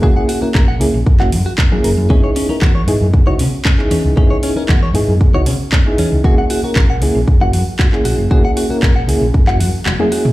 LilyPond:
<<
  \new Staff \with { instrumentName = "Clean electric guitar" } { \time 4/4 \key fis \mixolydian \tempo 4 = 116 fis'16 fis''16 fis'16 fis'16 ais'16 fis''16 r8. fis''16 r16 fis'16 r16 fis16 ais'16 r16 | cis'16 cis''16 cis'16 cis'16 fis'16 cis''16 r8. cis''16 cis'16 r16 cis'16 r16 cis'16 r16 | cis'16 cis''16 cis'16 cis'16 fis'16 cis''16 r8. cis''16 cis'16 r16 cis'16 r16 cis'16 r16 | fis'16 fis''16 fis'16 fis'16 ais'16 fis''16 r8. fis''16 fis'16 r16 fis'16 r16 fis'16 r16 |
fis'16 fis''16 fis'16 fis'16 ais'16 fis''16 r8. fis''16 fis'16 r16 fis'16 r16 fis'16 r16 | }
  \new Staff \with { instrumentName = "Reed electric piano" } { \time 4/4 \key fis \mixolydian <ais cis' e' gis'>8. <ais cis' e' ais'>16 r8 <ais cis' e' gis'>16 r8 <ais cis' e' fis'>16 r8. <ais cis' e' gis'>8. | <b dis' e' gis'>8. <b dis' e' ais'>16 r8 <b dis' e' gis'>16 r8 <b dis' e' fis'>16 r8. <b dis' e' gis'>8. | <b dis' e' gis'>8. <b dis' e' ais'>16 r8 <b dis' e' gis'>16 r8 <b dis' e' fis'>16 r8. <b dis' e' gis'>8. | <ais cis' e' gis'>8. <ais cis' e' ais'>16 r8 <ais cis' e' gis'>16 r8 <ais cis' e' fis'>16 r8. <ais cis' e' gis'>8. |
<ais cis' e' gis'>8. <ais cis' e' ais'>16 r8 <ais cis' e' gis'>16 r8 <ais cis' e' fis'>16 r8. <ais cis' e' gis'>8. | }
  \new Staff \with { instrumentName = "Fingered electric bass" } { \clef bass \time 4/4 \key fis \mixolydian fis,,16 r8. ais,,8 cis,16 ais,,16 r16 fis,,16 fis,16 r8. fis,,16 fis,16 | cis,16 r8. e,8 gis,16 fis,16 r16 cis,16 cis16 r8. e,16 cis,16 | cis,16 r8. e,8 gis,16 fis,16 r16 cis,16 cis16 r8. e,16 cis,16 | fis,,16 r8. ais,,8 cis,16 ais,,16 r16 fis,,16 fis,16 r8. ais,,16 fis,,16 |
fis,,16 r8. ais,,8 cis,16 ais,,16 r16 fis,,16 fis,16 r16 e,,16 r8. | }
  \new DrumStaff \with { instrumentName = "Drums" } \drummode { \time 4/4 bd8 hho8 <hc bd>8 hho8 bd16 hc16 hho8 <hc bd>8 hho8 | bd8 hho8 <hc bd>8 hho8 bd8 hho8 <hc bd>16 hc16 hho8 | bd8 hho8 <hc bd>8 hho8 bd8 hho8 <hc bd>8 hho8 | bd8 hho8 <hc bd>8 hho8 bd8 hho8 <hc bd>16 hc16 hho8 |
bd8 hho8 <hc bd>8 hho8 bd16 hc16 hho8 <hc tommh>16 tommh16 hho16 toml16 | }
>>